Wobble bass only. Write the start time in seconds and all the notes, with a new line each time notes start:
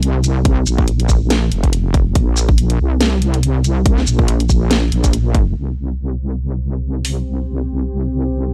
Already playing: C2
0.66 A#1
1.52 F1
2.15 A#1
2.79 C2
4.07 A#1
4.92 A#1
5.56 C2